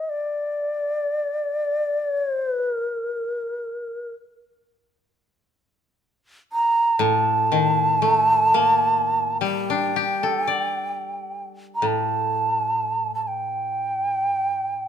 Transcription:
Already playing: D#5
0.10 D5
2.04 C#5
2.29 C5
2.54 B4
2.79 A#4
6.52 A#5
6.99 A2 A5
7.52 D#3
8.02 A3
8.54 A#3
9.41 G3 G5
9.70 D4
9.96 G4
10.23 A4
10.47 D5
11.75 A#5
11.82 A2
11.87 A5
13.15 A5
13.23 A5
13.27 G5

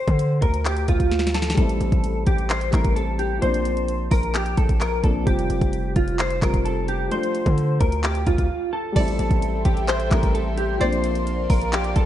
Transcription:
Already playing: C5
0.08 D3, kick, closed hi-hat
0.19 closed hi-hat
0.42 D2 A#4, kick, closed hi-hat, open hi-hat
0.54 closed hi-hat
0.65 G4, clap, closed hi-hat
0.77 closed hi-hat
0.88 D2 F4, kick, closed hi-hat
1.00 kick, closed hi-hat
1.12 snare, closed hi-hat
1.19 snare, closed hi-hat
1.27 snare, closed hi-hat
1.34 A4, snare, closed hi-hat
1.42 snare
1.50 snare
1.54 A1 G3 A3 A4, kick, closed hi-hat
1.59 C4 E4
1.69 closed hi-hat
1.81 A1, closed hi-hat
1.92 A1, kick, closed hi-hat
2.04 closed hi-hat
2.27 A1 G4, kick, closed hi-hat
2.38 closed hi-hat
2.50 C5, clap, closed hi-hat
2.61 closed hi-hat
2.71 A1 G3 A3 C4 E4 A#4, kick, clap, closed hi-hat
2.85 kick, closed hi-hat
2.96 A4, closed hi-hat
3.19 G4, closed hi-hat
3.38 A#1 F3 A#3 C5, closed hi-hat
3.43 C4 D4
3.54 closed hi-hat
3.65 closed hi-hat
3.77 closed hi-hat
3.88 closed hi-hat
4.11 A#1 A#4, kick, open hi-hat
4.23 closed hi-hat
4.35 G4, clap, closed hi-hat
4.46 closed hi-hat
4.57 A#1 A4, kick, closed hi-hat
4.69 kick, closed hi-hat
4.81 A#4, clap, closed hi-hat
5.02 A#1 F3 A#3 C4 D4 A4, kick, closed hi-hat
5.23 F1 F3 G3 G4, kick, closed hi-hat
5.28 C4 F4
5.39 closed hi-hat
5.50 F1, closed hi-hat
5.61 F1, kick, closed hi-hat
5.73 closed hi-hat
5.96 F1 F4, kick, closed hi-hat
6.08 closed hi-hat
6.19 C5, clap, closed hi-hat
6.30 closed hi-hat
6.40 F1 F3 G3 C4 F4 A#4, kick, clap, closed hi-hat
6.54 kick, closed hi-hat
6.65 A4, closed hi-hat
6.88 G4, closed hi-hat
7.08 F3 A3 C5, closed hi-hat
7.13 D4 F4
7.23 closed hi-hat
7.35 closed hi-hat
7.46 D3, kick, closed hi-hat
7.58 closed hi-hat
7.81 D2 A#4, kick, closed hi-hat, open hi-hat
7.92 closed hi-hat
8.04 G4, clap, closed hi-hat
8.15 closed hi-hat
8.27 D2 F4, kick, closed hi-hat
8.38 kick, closed hi-hat
8.73 A4
8.92 A1 G3 A3 A4 E5 G5 C6, kick, closed hi-hat, crash
8.96 C4 E4 D5
9.08 closed hi-hat
9.19 A1, closed hi-hat
9.31 A1, kick, closed hi-hat
9.42 closed hi-hat
9.65 A1 G4, kick, closed hi-hat
9.77 closed hi-hat
9.88 C5, clap, closed hi-hat
10.00 closed hi-hat
10.10 A1 G3 A3 C4 E4 A#4, kick, clap, closed hi-hat
10.23 kick, closed hi-hat
10.35 A4, closed hi-hat
10.58 G4, closed hi-hat
10.77 A#1 F3 A#3 A#4 C5 D5 F5, closed hi-hat
10.82 C4 D4
10.93 closed hi-hat
11.04 closed hi-hat
11.15 closed hi-hat
11.27 closed hi-hat
11.50 A#1 A#4, kick, open hi-hat
11.62 closed hi-hat
11.73 G4, clap, closed hi-hat
11.84 closed hi-hat
11.96 A#1 A4, kick, closed hi-hat

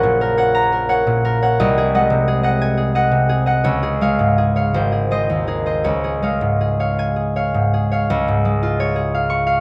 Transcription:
Already playing: A#1 C#4 A#4 C#5 F#5 A#5
0.03 A#2
0.21 A#4
0.37 C#5 F#5
0.55 A#5
0.72 A#4
0.89 C#5 F#5
1.07 A#2
1.25 A#4
1.42 C#5 F#5
1.60 C2 D#5
1.78 G#4
1.95 G#3 D#5 F#5
2.10 C3
2.28 G#4
2.43 D#5 F#5
2.62 G#5
2.77 G#4
2.95 D#5 F#5
3.11 C3
3.29 G#4
3.46 D#5 F#5
3.64 C#2 C#5
3.83 G#4
4.01 G#3 C#5 F5
4.19 G#2
4.38 G#4
4.56 C#5 F5
4.74 G#1 C5
4.92 G#4
5.11 G#3 C5 D#5
5.30 D#2
5.47 D#4 G#4
5.66 C5 D#5
5.84 C#2 C#5
6.04 G#4
6.23 G#3 C#5 F5
6.41 G#2
6.61 G#4
6.80 C#5 F5
6.99 G#5
7.16 G#4
7.36 C#5 F5
7.54 G#2
7.74 G#4
7.91 C#5 F5
8.10 C#2
8.28 G#2
8.45 G#3
8.63 F4
8.80 C#5
8.96 G#4
9.14 F5
9.30 C#6
9.47 F5

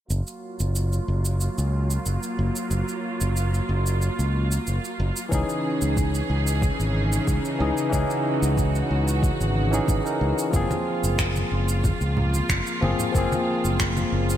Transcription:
0.10 F#1 F#3 A#3 F4, cabasa
0.27 cabasa
0.60 F#1, cabasa
0.76 cabasa
0.93 cabasa
1.08 F#1
1.25 cabasa
1.41 cabasa
1.58 C#2, cabasa
1.91 cabasa
2.06 F#1, cabasa
2.23 cabasa
2.39 F#1
2.56 cabasa
2.71 F#1, cabasa
2.88 cabasa
3.21 F#1, cabasa
3.37 cabasa
3.54 cabasa
3.69 F#1
3.86 cabasa
4.02 cabasa
4.19 C#2, cabasa
4.52 cabasa
4.67 F#1, cabasa
4.85 cabasa
5.00 F#1
5.16 cabasa
5.29 C#2 C#3 E3 C#4 D#4 G#4, kick, cabasa
5.34 G#4
5.49 cabasa
5.82 C#2, cabasa
5.97 kick, cabasa
6.15 cabasa
6.30 C#2
6.47 cabasa
6.62 kick, cabasa
6.79 G#1, cabasa
7.13 cabasa
7.27 C#2, kick, cabasa
7.45 cabasa
7.58 C#2 E3 C#4 D#4 G#4
7.78 cabasa
7.89 C#2 E3 C#4 D#4 F#4, kick, cabasa
7.95 G#4
8.10 cabasa
8.42 C#2, cabasa
8.58 kick, cabasa
8.75 cabasa
8.91 C#2
9.08 cabasa
9.23 kick, cabasa
9.41 G#1, cabasa
9.71 E3 C#4 D#4 G#4, cabasa
9.88 G#1, kick, cabasa
10.04 E3 C#4 D#4 A#4, cabasa
10.21 C#2
10.39 cabasa
10.51 F#1 F3 A#3 C4 F4, kick, cabasa
10.56 G#4
10.71 high conga, cabasa
11.04 F#1, cabasa
11.19 finger snap, kick, cabasa
11.36 high conga, cabasa
11.52 F#1
11.69 cabasa
11.84 kick, high conga, cabasa
12.01 C#2, cabasa
12.17 low conga
12.34 high conga, cabasa
12.49 F#1, finger snap, kick, cabasa
12.67 cabasa
12.81 F#1 F3 A#3 C4 G#4, high conga
12.99 low conga, cabasa
13.12 F#1 F3 A#3 C4, kick, cabasa
13.18 G#4
13.32 high conga, cabasa
13.65 F#1, cabasa
13.80 finger snap, kick, cabasa
13.97 high conga, cabasa
14.12 F#1
14.30 cabasa

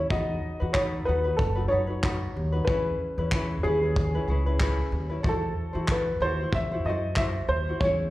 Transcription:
0.00 C#4 E4
0.10 E2 D#4 F#4 A4 B4 D#5, kick
0.60 E2 D#4 F#4 B4
0.73 D#4 F#4 A4 B4 C#5, kick, clap
1.05 D#2 D#4 F#4 A4 B4
1.24 D#4 F#4 B4
1.37 F#1 A4, kick
1.55 D#4 F#4 B4
1.68 D#4 F#4 A4 B4 C#5
1.73 F#2
1.87 D#4 F#4 B4
2.03 D#4 F#4 A4 B4, kick, clap
2.36 D#2
2.52 D#4 F#4 B4
2.65 E2 G#4 B4, kick
2.69 C#4 E4 B4
3.18 E2 E4 B4
3.22 C#4
3.32 C#4 E4 G#4 B4, kick, clap
3.63 D#2 C#4 E4 G#4
3.67 B4
3.82 C#4 E4 B4
3.96 kick
4.15 C#4 E4 B4
4.28 C#2 C#4 E4 G#4 B4
4.46 C#4 E4 B4
4.60 C#4 E4 G#4 B4, kick, clap
4.92 D#2
5.10 C#4 E4 B4
5.23 E2 E4 F#4 A4 C5, kick
5.29 A4
5.73 E2 E4 F#4 C5
5.88 E4 F#4 A4 B4, kick, clap
6.20 D#2 E4 F#4 A4 C5
6.24 C5
6.40 E4 F#4 C5
6.53 E2 E5, kick
6.71 E4 F#4 C5
6.85 F#2 E4 F#4 A4 D#5
6.89 C5
7.16 E4 F#4 A4 C5 E5, kick, clap
7.48 D#2 C5
7.67 E4 F#4 C5
7.80 E2 G#4 C#5, kick
7.84 C#4 E4 C#5

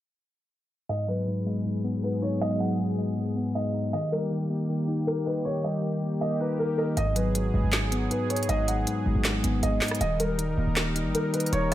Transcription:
0.89 G#2 F#3 B3 G#4 D#5
1.08 F#3 B4
1.28 G#2
1.46 G#3
1.65 G#2
1.84 B3
2.03 G#2 B4
2.22 D#4 C#5
2.41 G#2 D#5
2.60 F#3 F#5
2.79 G#2
2.98 G#3
3.18 G#2
3.37 B3
3.55 G#2 D#5
3.74 D#4
3.93 D#3 A#3 G4 D#5
4.12 G3 A#4
4.31 D#3
4.50 A#3
4.69 D#3
4.88 D#4
5.07 D#3 A#4
5.26 B4 D#5
5.45 D#3 C#5
5.64 G3 D#5
5.83 D#3
6.03 A#3
6.21 D#3 D#5
6.40 D#4 B4
6.59 D#3 A#4
6.78 A#4 D#5
6.97 G#1 G#2 F#3 B3 G#4 D#5, closed hi-hat
7.16 F#3 B4, closed hi-hat
7.35 G#2, closed hi-hat
7.54 G#1 G#3
7.64 G#1
7.72 G#2, snare, clap, closed hi-hat
7.92 B3, closed hi-hat
8.11 G#2 B4, closed hi-hat
8.30 D#4 C#5, closed hi-hat
8.36 closed hi-hat
8.43 closed hi-hat
8.49 G#1 G#2 D#5, closed hi-hat
8.68 F#3 F#5, closed hi-hat
8.87 G#2, closed hi-hat
9.06 G#1 G#3
9.15 G#1
9.24 G#2, snare, clap, closed hi-hat
9.44 G#1 B3, closed hi-hat
9.63 G#1 G#2 D#5, closed hi-hat
9.81 D#4, snare, clap, closed hi-hat, open hi-hat
9.88 cross-stick, closed hi-hat
9.95 closed hi-hat
10.01 D#1 D#3 G3 D#4 A#4 D#5, closed hi-hat
10.20 G3 A#4, closed hi-hat
10.39 D#3, closed hi-hat
10.58 D#1 A#3
10.67 D#1
10.76 D#3, snare, clap, closed hi-hat
10.96 D#4, closed hi-hat
11.05 G1
11.15 D#3 A#4, closed hi-hat
11.34 B4 D#5, closed hi-hat
11.40 closed hi-hat
11.46 closed hi-hat
11.53 D#1 D#3 C#5, closed hi-hat

